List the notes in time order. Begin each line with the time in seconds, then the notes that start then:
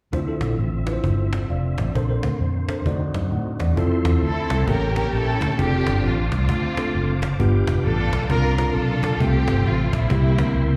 0.12 D2 D3 F3 C4 D4 E4 F4 C5 E5, cajon bass
0.27 D4 E4 F4 A4
0.41 A#1, cajon slap
0.59 A1, cajon slap
0.86 D4 E4 F4 B4, cajon slap
0.93 C5
1.04 G1, cajon bass
1.33 cajon slap
1.50 F1 D5 F5, cajon slap
1.78 A1 D5, cajon bass, cajon slap
1.95 A#1 A#2 D3 A#3 D4 A4 A#4 C5, cajon bass
2.08 D4 A4 A#4 C5
2.23 D2, cajon slap
2.41 F2, cajon slap
2.68 D4 A4 A#4 C5, cajon slap
2.86 D2 D3 C4 D#4 F#4 C5 D5, cajon bass
3.14 F#2, cajon slap
3.32 A2 F#5, cajon slap
3.59 E2 D5, cajon bass, cajon slap
3.77 F2 C4 E4 F4 A4 C5 E5 C6, cajon bass
4.05 E2, cajon slap
4.22 D2 C4 E4 A4, cajon slap
4.50 C2, cajon slap
4.68 A1 A2 A#3 C#4 G4 A4 A#4 G5 A5 C#6, cajon bass
4.96 A#3 C#4 G4 A#4, cajon slap
5.13 A#1 C#4 E4 A4, cajon slap
5.41 D2, cajon bass, cajon slap
5.58 F1 C4 D4 F4 G4 G#4 C5 F5 D6, cajon bass
5.65 A4
5.87 G1, cajon slap
6.04 A1 F4, cajon slap
6.32 C2 A3 C4 F4, cajon slap
6.49 D2, cajon bass
6.77 C4 D4 F4 A4, cajon slap
6.95 F#1, cajon slap
7.22 cajon bass, cajon slap
7.40 G1 G2 B3 D4 F4 G4 B4 F5 G5, cajon bass
7.67 F1, cajon slap
7.85 A1 D4 F4 A4, cajon slap
8.13 B1, cajon slap
8.30 C2 C3 A#3 C4 D4 F4 A#4 D5 F5 C6, cajon bass
8.58 C4 D4 F4 A4 A#4, cajon slap
8.65 A#4
8.75 B1 D4 F4 A4, cajon slap
9.03 cajon bass, cajon slap
9.20 C2 C3 A3 C4 F4 G4 A4 C5, cajon bass
9.27 A4
9.48 G1, cajon slap
9.65 A1 F4, cajon slap
9.93 A#1 G3 A#3 E4, cajon bass, cajon slap
10.10 C2 C3 A#3 C4 E4 G4 A#4 E5 G5, cajon bass
10.38 D2 A#3 C4 D4 A#4, cajon slap
10.44 E4
10.55 C#2, cajon slap